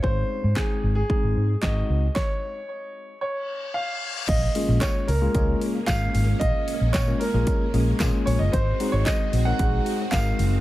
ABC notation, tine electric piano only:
X:1
M:4/4
L:1/16
Q:1/4=113
K:Bbm
V:1 name="Tine electric piano"
[A,CEA]3 z [A,CEA]3 z [A,CEA]3 z [A,CEG]3 z | z16 | z2 [A,B,DFA]4 z [A,B,DFA] [A,B,DFA]3 z [A,B,DFA]4- | [A,B,DFA]2 z3 [A,B,DFB]2 [A,B,DFA]2 z [A,B,DFA]2 [A,B,DFA]4 |
z2 [A,CEGA]4 z [A,CEGB] [A,CEGA]3 z [A,CEGB]4 |]